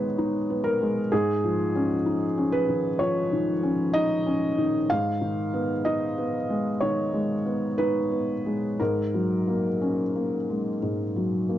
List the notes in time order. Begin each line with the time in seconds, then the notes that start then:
Already playing: D#3 G#3 B3 D#4 B4 C#5
0.18 D#4
0.50 B3
0.64 A#4
0.82 G#3
1.12 G#2 G#4
1.44 F3
1.76 C#4
2.06 D#4
2.38 C#4
2.52 B4
2.69 D#3
2.99 F3 C#5
3.32 D#3
3.63 C#4
3.94 D#4 D#5
4.26 C#4
4.58 D#3
4.90 G#2 F5
5.21 D#3
5.54 B3
5.85 D#4 D#5
6.18 B3
6.50 G#3
6.81 D#3 C#5
7.13 G#3
7.46 B3
7.78 D#4 B4
8.12 B3
8.46 G#3
8.80 G#2 A#4
9.14 F#3
9.48 A#3
9.82 C#4
10.16 A#3
10.50 G#3
10.83 G#2
11.16 F#3
11.49 A#3